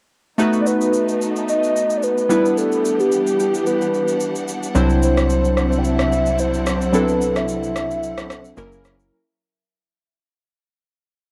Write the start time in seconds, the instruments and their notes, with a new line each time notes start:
0.38 synth keys A3 B3 D#4 F#4 B4, string section A3 B3 D#4, shaker
0.53 shaker
0.61 soft synth lead D5
0.67 soft synth lead B4, shaker
0.81 shaker
0.94 shaker
1.09 shaker
1.22 shaker
1.36 shaker
1.49 soft synth lead D#5, shaker
1.63 shaker
1.76 shaker
1.90 shaker
1.97 soft synth lead D5
2.03 soft synth lead B4, shaker
2.18 shaker
2.29 string section E3 D4 G4 F#5, synth keys G3 B3 D4 E4 B4, shaker
2.45 shaker
2.57 soft synth lead A4, shaker
2.72 shaker
2.85 shaker
3.00 soft synth lead G4, shaker
3.12 shaker
3.27 shaker
3.40 soft synth lead G4, shaker
3.54 shaker
3.67 soft synth lead B4, shaker
3.81 shaker
3.94 shaker
4.08 shaker
4.20 shaker
4.36 shaker
4.48 shaker
4.63 shaker
4.75 analog synth bass C2, string section C3 F#3 C4 E4, synth keys F#3 C4 D4 E4 C5, shaker
4.90 shaker
5.03 soft synth lead C5, shaker
5.17 cross-stick, shaker
5.30 shaker
5.45 shaker
5.57 cross-stick, shaker
5.73 shaker
5.79 soft synth lead G5
5.85 soft synth lead E5, shaker
5.99 cross-stick, shaker
6.13 shaker
6.26 shaker
6.39 soft synth lead C5, shaker
6.54 shaker
6.66 cross-stick, shaker
6.82 shaker
6.93 synth keys F#3 C4 D4 E4 A4, soft synth lead B4, shaker
7.08 shaker
7.21 shaker
7.36 soft synth lead E5, cross-stick, shaker
7.48 shaker
7.63 shaker
7.76 cross-stick, shaker
7.91 shaker
8.03 shaker
8.18 cross-stick, shaker
8.30 cross-stick, shaker
8.44 shaker
8.57 analog synth bass F#1, synth keys F#3 A#3 C#4 E4 A#4, string section F#3 C#4 G#4 A#4, shaker
8.72 shaker
8.85 cross-stick, shaker
9.00 shaker